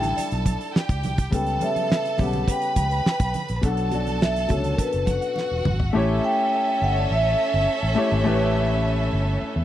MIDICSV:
0, 0, Header, 1, 7, 480
1, 0, Start_track
1, 0, Tempo, 576923
1, 1104, Time_signature, 4, 2, 24, 8
1, 8024, End_track
2, 0, Start_track
2, 0, Title_t, "Vibraphone"
2, 0, Program_c, 0, 11
2, 0, Note_on_c, 0, 79, 78
2, 137, Note_on_c, 0, 74, 71
2, 152, Note_off_c, 0, 79, 0
2, 827, Note_off_c, 0, 74, 0
2, 1114, Note_on_c, 0, 79, 88
2, 1333, Note_off_c, 0, 79, 0
2, 1361, Note_on_c, 0, 76, 83
2, 1800, Note_off_c, 0, 76, 0
2, 1850, Note_on_c, 0, 78, 80
2, 2084, Note_off_c, 0, 78, 0
2, 2089, Note_on_c, 0, 79, 89
2, 2764, Note_off_c, 0, 79, 0
2, 3036, Note_on_c, 0, 78, 84
2, 3254, Note_off_c, 0, 78, 0
2, 3278, Note_on_c, 0, 74, 82
2, 3513, Note_on_c, 0, 76, 80
2, 3519, Note_off_c, 0, 74, 0
2, 3733, Note_off_c, 0, 76, 0
2, 3758, Note_on_c, 0, 73, 71
2, 3921, Note_off_c, 0, 73, 0
2, 3936, Note_on_c, 0, 70, 50
2, 3990, Note_off_c, 0, 70, 0
2, 4006, Note_on_c, 0, 71, 73
2, 4683, Note_off_c, 0, 71, 0
2, 5195, Note_on_c, 0, 79, 95
2, 5685, Note_off_c, 0, 79, 0
2, 5689, Note_on_c, 0, 78, 83
2, 5770, Note_off_c, 0, 78, 0
2, 5775, Note_on_c, 0, 73, 52
2, 5796, Note_off_c, 0, 73, 0
2, 5809, Note_on_c, 0, 74, 66
2, 5910, Note_off_c, 0, 74, 0
2, 5925, Note_on_c, 0, 76, 78
2, 6362, Note_off_c, 0, 76, 0
2, 8024, End_track
3, 0, Start_track
3, 0, Title_t, "Violin section"
3, 0, Program_c, 1, 48
3, 0, Note_on_c, 1, 69, 79
3, 0, Note_on_c, 1, 81, 84
3, 594, Note_off_c, 1, 69, 0
3, 594, Note_off_c, 1, 81, 0
3, 613, Note_on_c, 1, 79, 81
3, 615, Note_on_c, 1, 67, 68
3, 1089, Note_off_c, 1, 79, 0
3, 1090, Note_off_c, 1, 67, 0
3, 1100, Note_on_c, 1, 81, 82
3, 1104, Note_on_c, 1, 69, 76
3, 2043, Note_off_c, 1, 81, 0
3, 2045, Note_off_c, 1, 69, 0
3, 2057, Note_on_c, 1, 71, 74
3, 2063, Note_on_c, 1, 83, 88
3, 3003, Note_off_c, 1, 71, 0
3, 3005, Note_off_c, 1, 83, 0
3, 3023, Note_on_c, 1, 81, 89
3, 3026, Note_on_c, 1, 69, 75
3, 4201, Note_off_c, 1, 81, 0
3, 4202, Note_off_c, 1, 69, 0
3, 4224, Note_on_c, 1, 66, 67
3, 4227, Note_on_c, 1, 78, 78
3, 4931, Note_off_c, 1, 66, 0
3, 4932, Note_off_c, 1, 78, 0
3, 4944, Note_on_c, 1, 61, 78
3, 4944, Note_on_c, 1, 76, 88
3, 4946, Note_on_c, 1, 69, 72
3, 8024, Note_off_c, 1, 61, 0
3, 8024, Note_off_c, 1, 69, 0
3, 8024, Note_off_c, 1, 76, 0
3, 8024, End_track
4, 0, Start_track
4, 0, Title_t, "Grand piano"
4, 0, Program_c, 2, 0
4, 0, Control_c, 2, 64, 127
4, 0, Note_on_c, 2, 55, 61
4, 0, Note_on_c, 2, 62, 57
4, 0, Note_on_c, 2, 63, 58
4, 0, Note_on_c, 2, 64, 69
4, 644, Note_off_c, 2, 55, 0
4, 651, Note_off_c, 2, 62, 0
4, 657, Note_off_c, 2, 64, 0
4, 1086, Note_on_c, 2, 49, 63
4, 1094, Note_on_c, 2, 55, 66
4, 1103, Note_on_c, 2, 59, 60
4, 1114, Control_c, 2, 64, 0
4, 1114, Note_on_c, 2, 69, 66
4, 1122, Note_off_c, 2, 63, 0
4, 1251, Control_c, 2, 64, 127
4, 1282, Note_off_c, 2, 49, 0
4, 1286, Note_off_c, 2, 55, 0
4, 1291, Note_off_c, 2, 59, 0
4, 1296, Note_off_c, 2, 69, 0
4, 1327, Note_on_c, 2, 49, 61
4, 1335, Note_on_c, 2, 55, 60
4, 1345, Note_on_c, 2, 59, 55
4, 1353, Note_on_c, 2, 69, 63
4, 1710, Note_off_c, 2, 49, 0
4, 1714, Note_off_c, 2, 55, 0
4, 1719, Note_off_c, 2, 59, 0
4, 1723, Note_off_c, 2, 69, 0
4, 1809, Note_on_c, 2, 49, 69
4, 1818, Note_on_c, 2, 55, 51
4, 1826, Note_on_c, 2, 59, 59
4, 1836, Note_on_c, 2, 67, 71
4, 2565, Note_off_c, 2, 49, 0
4, 2569, Note_off_c, 2, 55, 0
4, 2573, Note_off_c, 2, 59, 0
4, 2578, Note_off_c, 2, 67, 0
4, 3007, Note_on_c, 2, 47, 73
4, 3015, Note_on_c, 2, 54, 58
4, 3025, Note_on_c, 2, 62, 62
4, 3032, Note_on_c, 2, 69, 71
4, 3036, Control_c, 2, 64, 0
4, 3184, Control_c, 2, 64, 127
4, 3203, Note_off_c, 2, 47, 0
4, 3207, Note_off_c, 2, 54, 0
4, 3212, Note_off_c, 2, 62, 0
4, 3216, Note_off_c, 2, 69, 0
4, 3250, Note_on_c, 2, 47, 65
4, 3260, Note_on_c, 2, 54, 55
4, 3268, Note_on_c, 2, 62, 55
4, 3276, Note_on_c, 2, 66, 61
4, 3632, Note_off_c, 2, 47, 0
4, 3637, Note_off_c, 2, 54, 0
4, 3641, Note_off_c, 2, 62, 0
4, 3645, Note_off_c, 2, 66, 0
4, 3728, Note_on_c, 2, 47, 61
4, 3737, Note_on_c, 2, 54, 60
4, 3746, Note_on_c, 2, 61, 40
4, 3754, Note_on_c, 2, 69, 70
4, 3800, Note_off_c, 2, 61, 0
4, 3801, Note_on_c, 2, 62, 54
4, 4485, Note_off_c, 2, 47, 0
4, 4489, Note_off_c, 2, 54, 0
4, 4498, Note_off_c, 2, 69, 0
4, 4521, Note_off_c, 2, 62, 0
4, 4933, Note_on_c, 2, 57, 79
4, 4942, Note_on_c, 2, 64, 79
4, 4951, Note_on_c, 2, 67, 78
4, 4956, Control_c, 2, 64, 0
4, 4960, Note_on_c, 2, 73, 92
4, 5118, Control_c, 2, 64, 127
4, 5687, Note_off_c, 2, 57, 0
4, 5692, Note_off_c, 2, 64, 0
4, 5696, Note_off_c, 2, 67, 0
4, 5701, Note_off_c, 2, 73, 0
4, 6614, Note_on_c, 2, 57, 78
4, 6622, Note_on_c, 2, 64, 68
4, 6632, Note_on_c, 2, 67, 70
4, 6640, Note_on_c, 2, 73, 92
4, 6807, Note_off_c, 2, 57, 0
4, 6811, Note_off_c, 2, 64, 0
4, 6815, Note_off_c, 2, 67, 0
4, 6820, Note_off_c, 2, 73, 0
4, 6856, Note_on_c, 2, 57, 88
4, 6863, Note_on_c, 2, 64, 72
4, 6874, Note_on_c, 2, 67, 76
4, 6882, Note_on_c, 2, 71, 75
4, 6927, Note_off_c, 2, 71, 0
4, 6938, Note_on_c, 2, 73, 89
4, 7607, Note_off_c, 2, 57, 0
4, 7611, Note_off_c, 2, 64, 0
4, 7616, Note_off_c, 2, 67, 0
4, 7649, Note_off_c, 2, 73, 0
4, 8024, End_track
5, 0, Start_track
5, 0, Title_t, "Fingered electric bass"
5, 0, Program_c, 3, 33
5, 0, Note_on_c, 3, 33, 85
5, 104, Note_off_c, 3, 33, 0
5, 268, Note_on_c, 3, 35, 86
5, 463, Note_off_c, 3, 35, 0
5, 744, Note_on_c, 3, 37, 65
5, 869, Note_off_c, 3, 37, 0
5, 869, Note_on_c, 3, 36, 79
5, 1064, Note_off_c, 3, 36, 0
5, 1106, Note_on_c, 3, 37, 84
5, 1302, Note_off_c, 3, 37, 0
5, 1827, Note_on_c, 3, 35, 75
5, 2024, Note_off_c, 3, 35, 0
5, 2302, Note_on_c, 3, 37, 85
5, 2501, Note_off_c, 3, 37, 0
5, 2664, Note_on_c, 3, 35, 74
5, 2763, Note_off_c, 3, 35, 0
5, 2909, Note_on_c, 3, 34, 79
5, 3006, Note_off_c, 3, 34, 0
5, 3025, Note_on_c, 3, 35, 93
5, 3713, Note_off_c, 3, 35, 0
5, 3749, Note_on_c, 3, 37, 71
5, 3945, Note_off_c, 3, 37, 0
5, 4109, Note_on_c, 3, 30, 79
5, 4305, Note_off_c, 3, 30, 0
5, 4588, Note_on_c, 3, 28, 59
5, 4686, Note_off_c, 3, 28, 0
5, 4711, Note_on_c, 3, 32, 80
5, 4906, Note_off_c, 3, 32, 0
5, 4951, Note_on_c, 3, 33, 89
5, 5146, Note_off_c, 3, 33, 0
5, 5672, Note_on_c, 3, 31, 76
5, 5867, Note_off_c, 3, 31, 0
5, 5912, Note_on_c, 3, 33, 75
5, 6107, Note_off_c, 3, 33, 0
5, 6272, Note_on_c, 3, 31, 82
5, 6368, Note_off_c, 3, 31, 0
5, 6513, Note_on_c, 3, 33, 80
5, 6608, Note_off_c, 3, 33, 0
5, 6754, Note_on_c, 3, 32, 84
5, 6849, Note_off_c, 3, 32, 0
5, 6873, Note_on_c, 3, 33, 82
5, 7555, Note_off_c, 3, 33, 0
5, 7595, Note_on_c, 3, 31, 76
5, 7787, Note_off_c, 3, 31, 0
5, 7954, Note_on_c, 3, 40, 79
5, 8024, Note_off_c, 3, 40, 0
5, 8024, End_track
6, 0, Start_track
6, 0, Title_t, "Muted fingered electric bass strokes"
6, 150, Note_on_c, 9, 29, 46
6, 233, Note_off_c, 9, 29, 0
6, 7837, Note_on_c, 9, 29, 45
6, 7920, Note_off_c, 9, 29, 0
6, 8024, End_track
7, 0, Start_track
7, 0, Title_t, "Drums"
7, 21, Note_on_c, 9, 64, 65
7, 24, Note_on_c, 9, 42, 57
7, 104, Note_off_c, 9, 64, 0
7, 107, Note_off_c, 9, 42, 0
7, 148, Note_on_c, 9, 42, 89
7, 149, Note_on_c, 9, 62, 35
7, 231, Note_off_c, 9, 42, 0
7, 232, Note_off_c, 9, 62, 0
7, 261, Note_on_c, 9, 42, 46
7, 344, Note_off_c, 9, 42, 0
7, 380, Note_on_c, 9, 36, 67
7, 380, Note_on_c, 9, 42, 60
7, 383, Note_on_c, 9, 63, 57
7, 463, Note_off_c, 9, 36, 0
7, 463, Note_off_c, 9, 42, 0
7, 466, Note_off_c, 9, 63, 0
7, 505, Note_on_c, 9, 42, 47
7, 589, Note_off_c, 9, 42, 0
7, 632, Note_on_c, 9, 38, 96
7, 715, Note_off_c, 9, 38, 0
7, 741, Note_on_c, 9, 42, 51
7, 742, Note_on_c, 9, 36, 92
7, 824, Note_off_c, 9, 42, 0
7, 825, Note_off_c, 9, 36, 0
7, 860, Note_on_c, 9, 42, 71
7, 871, Note_on_c, 9, 62, 29
7, 871, Note_on_c, 9, 63, 57
7, 871, Note_on_c, 9, 64, 58
7, 944, Note_off_c, 9, 42, 0
7, 954, Note_off_c, 9, 62, 0
7, 954, Note_off_c, 9, 63, 0
7, 954, Note_off_c, 9, 64, 0
7, 982, Note_on_c, 9, 42, 51
7, 984, Note_on_c, 9, 36, 86
7, 1065, Note_off_c, 9, 42, 0
7, 1067, Note_off_c, 9, 36, 0
7, 1102, Note_on_c, 9, 36, 99
7, 1102, Note_on_c, 9, 42, 73
7, 1106, Note_on_c, 9, 62, 23
7, 1185, Note_off_c, 9, 36, 0
7, 1185, Note_off_c, 9, 42, 0
7, 1190, Note_off_c, 9, 62, 0
7, 1219, Note_on_c, 9, 42, 43
7, 1302, Note_off_c, 9, 42, 0
7, 1339, Note_on_c, 9, 42, 63
7, 1344, Note_on_c, 9, 62, 24
7, 1344, Note_on_c, 9, 63, 56
7, 1422, Note_off_c, 9, 42, 0
7, 1427, Note_off_c, 9, 62, 0
7, 1427, Note_off_c, 9, 63, 0
7, 1465, Note_on_c, 9, 42, 44
7, 1466, Note_on_c, 9, 63, 51
7, 1548, Note_off_c, 9, 42, 0
7, 1550, Note_off_c, 9, 63, 0
7, 1582, Note_on_c, 9, 62, 29
7, 1594, Note_on_c, 9, 38, 101
7, 1665, Note_off_c, 9, 62, 0
7, 1677, Note_off_c, 9, 38, 0
7, 1709, Note_on_c, 9, 42, 44
7, 1712, Note_on_c, 9, 38, 30
7, 1792, Note_off_c, 9, 42, 0
7, 1796, Note_off_c, 9, 38, 0
7, 1813, Note_on_c, 9, 46, 49
7, 1823, Note_on_c, 9, 36, 81
7, 1825, Note_on_c, 9, 62, 29
7, 1825, Note_on_c, 9, 64, 64
7, 1896, Note_off_c, 9, 46, 0
7, 1907, Note_off_c, 9, 36, 0
7, 1908, Note_off_c, 9, 62, 0
7, 1908, Note_off_c, 9, 64, 0
7, 1940, Note_on_c, 9, 42, 54
7, 1943, Note_on_c, 9, 64, 69
7, 2024, Note_off_c, 9, 42, 0
7, 2026, Note_off_c, 9, 64, 0
7, 2060, Note_on_c, 9, 36, 87
7, 2064, Note_on_c, 9, 42, 81
7, 2143, Note_off_c, 9, 36, 0
7, 2147, Note_off_c, 9, 42, 0
7, 2176, Note_on_c, 9, 42, 46
7, 2259, Note_off_c, 9, 42, 0
7, 2297, Note_on_c, 9, 42, 61
7, 2298, Note_on_c, 9, 36, 74
7, 2301, Note_on_c, 9, 62, 31
7, 2301, Note_on_c, 9, 63, 56
7, 2380, Note_off_c, 9, 42, 0
7, 2381, Note_off_c, 9, 36, 0
7, 2384, Note_off_c, 9, 62, 0
7, 2384, Note_off_c, 9, 63, 0
7, 2421, Note_on_c, 9, 42, 42
7, 2504, Note_off_c, 9, 42, 0
7, 2548, Note_on_c, 9, 38, 84
7, 2631, Note_off_c, 9, 38, 0
7, 2659, Note_on_c, 9, 42, 48
7, 2661, Note_on_c, 9, 36, 93
7, 2742, Note_off_c, 9, 42, 0
7, 2744, Note_off_c, 9, 36, 0
7, 2778, Note_on_c, 9, 42, 59
7, 2788, Note_on_c, 9, 62, 30
7, 2788, Note_on_c, 9, 63, 59
7, 2788, Note_on_c, 9, 64, 58
7, 2861, Note_off_c, 9, 42, 0
7, 2871, Note_off_c, 9, 62, 0
7, 2871, Note_off_c, 9, 63, 0
7, 2871, Note_off_c, 9, 64, 0
7, 2899, Note_on_c, 9, 42, 51
7, 2982, Note_off_c, 9, 42, 0
7, 3018, Note_on_c, 9, 42, 77
7, 3022, Note_on_c, 9, 36, 101
7, 3027, Note_on_c, 9, 62, 23
7, 3102, Note_off_c, 9, 42, 0
7, 3105, Note_off_c, 9, 36, 0
7, 3110, Note_off_c, 9, 62, 0
7, 3138, Note_on_c, 9, 42, 46
7, 3221, Note_off_c, 9, 42, 0
7, 3257, Note_on_c, 9, 42, 71
7, 3260, Note_on_c, 9, 63, 55
7, 3340, Note_off_c, 9, 42, 0
7, 3343, Note_off_c, 9, 63, 0
7, 3384, Note_on_c, 9, 42, 43
7, 3386, Note_on_c, 9, 63, 49
7, 3467, Note_off_c, 9, 42, 0
7, 3469, Note_off_c, 9, 63, 0
7, 3504, Note_on_c, 9, 62, 27
7, 3512, Note_on_c, 9, 38, 108
7, 3587, Note_off_c, 9, 62, 0
7, 3596, Note_off_c, 9, 38, 0
7, 3631, Note_on_c, 9, 42, 48
7, 3635, Note_on_c, 9, 38, 32
7, 3714, Note_off_c, 9, 42, 0
7, 3718, Note_off_c, 9, 38, 0
7, 3734, Note_on_c, 9, 42, 72
7, 3745, Note_on_c, 9, 36, 85
7, 3747, Note_on_c, 9, 63, 39
7, 3747, Note_on_c, 9, 64, 55
7, 3817, Note_off_c, 9, 42, 0
7, 3828, Note_off_c, 9, 36, 0
7, 3830, Note_off_c, 9, 63, 0
7, 3830, Note_off_c, 9, 64, 0
7, 3860, Note_on_c, 9, 64, 69
7, 3861, Note_on_c, 9, 42, 49
7, 3943, Note_off_c, 9, 64, 0
7, 3944, Note_off_c, 9, 42, 0
7, 3981, Note_on_c, 9, 36, 86
7, 3984, Note_on_c, 9, 42, 92
7, 3988, Note_on_c, 9, 62, 30
7, 4064, Note_off_c, 9, 36, 0
7, 4067, Note_off_c, 9, 42, 0
7, 4071, Note_off_c, 9, 62, 0
7, 4097, Note_on_c, 9, 42, 46
7, 4180, Note_off_c, 9, 42, 0
7, 4217, Note_on_c, 9, 42, 71
7, 4219, Note_on_c, 9, 36, 71
7, 4219, Note_on_c, 9, 63, 64
7, 4301, Note_off_c, 9, 42, 0
7, 4302, Note_off_c, 9, 63, 0
7, 4303, Note_off_c, 9, 36, 0
7, 4343, Note_on_c, 9, 42, 47
7, 4426, Note_off_c, 9, 42, 0
7, 4458, Note_on_c, 9, 62, 33
7, 4473, Note_on_c, 9, 38, 45
7, 4541, Note_off_c, 9, 62, 0
7, 4556, Note_off_c, 9, 38, 0
7, 4703, Note_on_c, 9, 45, 80
7, 4704, Note_on_c, 9, 62, 27
7, 4704, Note_on_c, 9, 63, 62
7, 4704, Note_on_c, 9, 64, 64
7, 4786, Note_off_c, 9, 45, 0
7, 4788, Note_off_c, 9, 62, 0
7, 4788, Note_off_c, 9, 63, 0
7, 4788, Note_off_c, 9, 64, 0
7, 4823, Note_on_c, 9, 43, 74
7, 4906, Note_off_c, 9, 43, 0
7, 8024, End_track
0, 0, End_of_file